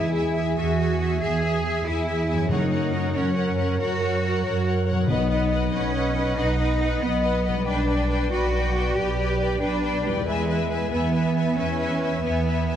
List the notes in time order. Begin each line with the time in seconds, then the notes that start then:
Already playing: E2 G#3 E4 G#4 B4 E5 G#5
0.15 G#4 E5 G#5
0.35 G#4 E5 G#5
0.56 E2 F#4 G#4 E5 G#5
0.78 G#4 E5 G#5
0.98 G#4 E5 G#5
1.21 E2 G#4 E5 G#5
1.42 G#4 E5 G#5
1.63 G#4 E5 G#5
1.85 E2 E4 G#4 E5 G#5
2.06 G#4 E5 G#5
2.28 G#4 E5 G#5
2.33 F#2
2.38 F#3
2.42 C#4
2.47 F#2 D#4 A#4 C#5 F#5
2.51 F#2 A#4 C#5
2.71 A#4 C#5 F#5
2.92 A#4 C#5 F#5
3.13 F#2 C#4 A#4 C#5 F#5
3.35 A#4 C#5 F#5
3.57 A#4 C#5 F#5
3.80 F#2 F#4 A#4 C#5 F#5
4.01 A#4 C#5 F#5
4.22 A#4 C#5 F#5
4.44 F#2 A#4 C#5 F#5
4.66 A#4 C#5 F#5
4.86 A#4 C#5 F#5
4.91 B2
4.95 F#3
5.00 D#4
5.04 B2 B4
5.09 B1 B3 B4 D#5 F#5
5.30 B4 D#5 F#5
5.50 B4 D#5 F#5
5.69 B1 D#5 F#5
5.73 C#4 B4
5.92 B4 D#5
5.96 F#5
6.13 B4 D#5 F#5
6.36 B1 D#4 B4 D#5 F#5
6.58 B4 D#5 F#5
6.80 B4 D#5 F#5
7.01 B1 B3 B4 D#5 F#5
7.22 B4 D#5 F#5
7.45 B2 B4 D#5 F#5
7.53 G3
7.58 D4
7.62 B4
7.66 B1 D4 B4 D5 G5
7.87 B4 D5 G5
8.10 B4 D5 G5
8.31 B1 F#4 B4 D5 G5
8.54 B4 D5 G5
8.74 B4 D5 G5
8.95 B1 G4 B4 D5 G5
9.17 B4 G5
9.22 D5
9.39 B4 D5 G5
9.60 B1 D4 B4 D5 G5
9.83 B4 D5 G5
10.03 G3 B4 D5 G5
10.08 E2
10.13 G#3
10.17 E4
10.22 B4 E5
10.26 E2 G#3 B4 E5 G#5
10.48 B4 E5 G#5
10.70 B4 E5 G#5
10.90 E2 B3 B4 E5 G#5
11.13 B4 E5 G#5
11.35 B4 E5 G#5
11.55 E2 C#4 B4 E5 G#5
11.77 B4 E5
11.81 G#5
11.99 B4 G#5
12.04 E5
12.22 E2 B3 B4 G#5
12.26 E5
12.44 B4 E5 G#5
12.66 B4 E5 G#5
12.72 F#2